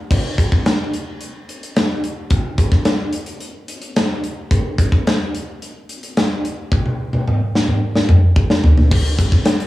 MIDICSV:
0, 0, Header, 1, 2, 480
1, 0, Start_track
1, 0, Tempo, 549954
1, 92, Time_signature, 4, 2, 24, 8
1, 8439, End_track
2, 0, Start_track
2, 0, Title_t, "Drums"
2, 93, Note_on_c, 9, 36, 104
2, 100, Note_on_c, 9, 49, 99
2, 180, Note_off_c, 9, 36, 0
2, 187, Note_off_c, 9, 49, 0
2, 333, Note_on_c, 9, 36, 88
2, 336, Note_on_c, 9, 42, 74
2, 420, Note_off_c, 9, 36, 0
2, 423, Note_off_c, 9, 42, 0
2, 454, Note_on_c, 9, 36, 87
2, 542, Note_off_c, 9, 36, 0
2, 575, Note_on_c, 9, 42, 71
2, 578, Note_on_c, 9, 38, 105
2, 662, Note_off_c, 9, 42, 0
2, 665, Note_off_c, 9, 38, 0
2, 816, Note_on_c, 9, 42, 73
2, 904, Note_off_c, 9, 42, 0
2, 1053, Note_on_c, 9, 42, 67
2, 1140, Note_off_c, 9, 42, 0
2, 1300, Note_on_c, 9, 42, 74
2, 1387, Note_off_c, 9, 42, 0
2, 1423, Note_on_c, 9, 42, 72
2, 1511, Note_off_c, 9, 42, 0
2, 1538, Note_on_c, 9, 42, 75
2, 1541, Note_on_c, 9, 38, 118
2, 1626, Note_off_c, 9, 42, 0
2, 1628, Note_off_c, 9, 38, 0
2, 1778, Note_on_c, 9, 42, 70
2, 1865, Note_off_c, 9, 42, 0
2, 2010, Note_on_c, 9, 42, 74
2, 2013, Note_on_c, 9, 36, 109
2, 2097, Note_off_c, 9, 42, 0
2, 2100, Note_off_c, 9, 36, 0
2, 2252, Note_on_c, 9, 36, 95
2, 2254, Note_on_c, 9, 42, 75
2, 2340, Note_off_c, 9, 36, 0
2, 2342, Note_off_c, 9, 42, 0
2, 2372, Note_on_c, 9, 36, 89
2, 2373, Note_on_c, 9, 38, 35
2, 2459, Note_off_c, 9, 36, 0
2, 2461, Note_off_c, 9, 38, 0
2, 2488, Note_on_c, 9, 42, 71
2, 2491, Note_on_c, 9, 38, 109
2, 2576, Note_off_c, 9, 42, 0
2, 2578, Note_off_c, 9, 38, 0
2, 2728, Note_on_c, 9, 42, 76
2, 2815, Note_off_c, 9, 42, 0
2, 2847, Note_on_c, 9, 42, 69
2, 2934, Note_off_c, 9, 42, 0
2, 2971, Note_on_c, 9, 42, 78
2, 3058, Note_off_c, 9, 42, 0
2, 3214, Note_on_c, 9, 42, 83
2, 3301, Note_off_c, 9, 42, 0
2, 3331, Note_on_c, 9, 42, 81
2, 3418, Note_off_c, 9, 42, 0
2, 3458, Note_on_c, 9, 42, 78
2, 3461, Note_on_c, 9, 38, 113
2, 3546, Note_off_c, 9, 42, 0
2, 3548, Note_off_c, 9, 38, 0
2, 3698, Note_on_c, 9, 42, 75
2, 3785, Note_off_c, 9, 42, 0
2, 3936, Note_on_c, 9, 36, 112
2, 3940, Note_on_c, 9, 42, 72
2, 4024, Note_off_c, 9, 36, 0
2, 4027, Note_off_c, 9, 42, 0
2, 4176, Note_on_c, 9, 36, 89
2, 4182, Note_on_c, 9, 42, 76
2, 4263, Note_off_c, 9, 36, 0
2, 4270, Note_off_c, 9, 42, 0
2, 4295, Note_on_c, 9, 36, 82
2, 4383, Note_off_c, 9, 36, 0
2, 4425, Note_on_c, 9, 42, 71
2, 4428, Note_on_c, 9, 38, 106
2, 4513, Note_off_c, 9, 42, 0
2, 4515, Note_off_c, 9, 38, 0
2, 4666, Note_on_c, 9, 42, 76
2, 4753, Note_off_c, 9, 42, 0
2, 4907, Note_on_c, 9, 42, 71
2, 4994, Note_off_c, 9, 42, 0
2, 5144, Note_on_c, 9, 42, 69
2, 5231, Note_off_c, 9, 42, 0
2, 5264, Note_on_c, 9, 42, 75
2, 5352, Note_off_c, 9, 42, 0
2, 5385, Note_on_c, 9, 42, 75
2, 5388, Note_on_c, 9, 38, 110
2, 5472, Note_off_c, 9, 42, 0
2, 5475, Note_off_c, 9, 38, 0
2, 5628, Note_on_c, 9, 42, 75
2, 5716, Note_off_c, 9, 42, 0
2, 5862, Note_on_c, 9, 36, 105
2, 5863, Note_on_c, 9, 48, 62
2, 5949, Note_off_c, 9, 36, 0
2, 5951, Note_off_c, 9, 48, 0
2, 5984, Note_on_c, 9, 48, 55
2, 6071, Note_off_c, 9, 48, 0
2, 6224, Note_on_c, 9, 48, 64
2, 6311, Note_off_c, 9, 48, 0
2, 6350, Note_on_c, 9, 47, 71
2, 6437, Note_off_c, 9, 47, 0
2, 6593, Note_on_c, 9, 38, 87
2, 6680, Note_off_c, 9, 38, 0
2, 6703, Note_on_c, 9, 47, 68
2, 6790, Note_off_c, 9, 47, 0
2, 6943, Note_on_c, 9, 38, 75
2, 7030, Note_off_c, 9, 38, 0
2, 7059, Note_on_c, 9, 45, 94
2, 7146, Note_off_c, 9, 45, 0
2, 7298, Note_on_c, 9, 36, 101
2, 7385, Note_off_c, 9, 36, 0
2, 7419, Note_on_c, 9, 38, 93
2, 7507, Note_off_c, 9, 38, 0
2, 7538, Note_on_c, 9, 43, 97
2, 7626, Note_off_c, 9, 43, 0
2, 7659, Note_on_c, 9, 43, 84
2, 7746, Note_off_c, 9, 43, 0
2, 7780, Note_on_c, 9, 36, 111
2, 7782, Note_on_c, 9, 49, 123
2, 7868, Note_off_c, 9, 36, 0
2, 7869, Note_off_c, 9, 49, 0
2, 7902, Note_on_c, 9, 42, 50
2, 7990, Note_off_c, 9, 42, 0
2, 8018, Note_on_c, 9, 36, 90
2, 8020, Note_on_c, 9, 42, 77
2, 8105, Note_off_c, 9, 36, 0
2, 8107, Note_off_c, 9, 42, 0
2, 8132, Note_on_c, 9, 38, 35
2, 8135, Note_on_c, 9, 36, 91
2, 8219, Note_off_c, 9, 38, 0
2, 8223, Note_off_c, 9, 36, 0
2, 8251, Note_on_c, 9, 42, 96
2, 8254, Note_on_c, 9, 38, 110
2, 8338, Note_off_c, 9, 42, 0
2, 8341, Note_off_c, 9, 38, 0
2, 8379, Note_on_c, 9, 42, 47
2, 8439, Note_off_c, 9, 42, 0
2, 8439, End_track
0, 0, End_of_file